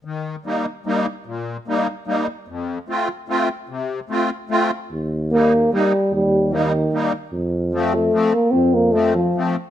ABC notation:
X:1
M:3/4
L:1/8
Q:"Swing" 1/4=148
K:Eb
V:1 name="Accordion"
E,2 [G,B,E] z [G,B,E] z | B,,2 [G,B,E] z [G,B,E] z | F,,2 [=A,CF] z [A,CF] z | C,2 [=A,CF] z [A,CF] z |
z2 [G,B,E] z [G,B,E] z | z2 [G,B,E] z [G,B,E] z | z2 [F,=A,C] z [F,A,C] z | z2 [F,=A,C] z [F,A,C] z |]
V:2 name="Euphonium"
z6 | z6 | z6 | z6 |
z2 B,2 G,2 | G,2 E,3 z | z2 F, =A,2 B, | C B, =A, F,2 z |]
V:3 name="Tuba" clef=bass
z6 | z6 | z6 | z6 |
E,,6 | E,,6 | F,,6 | F,,6 |]